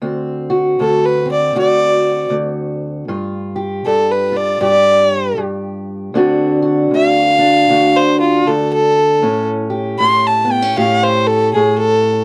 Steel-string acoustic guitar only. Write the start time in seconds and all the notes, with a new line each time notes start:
0.02 D2 C4
0.50 F#4
0.80 D2
1.26 C4
1.55 D2 F#4
2.30 D2
3.08 G2 F4
3.56 G4
3.86 G2
4.32 F4
4.61 G2 G4
5.37 G2
6.14 D2 D3 C4 D4 F#4
6.62 F#4
6.91 D2
7.39 D4
7.69 D2 F#4
8.47 D2
9.22 A2 C#4
9.70 G4
10.00 A2
10.45 B3
10.62 C#4
10.78 A2 G4
11.56 A2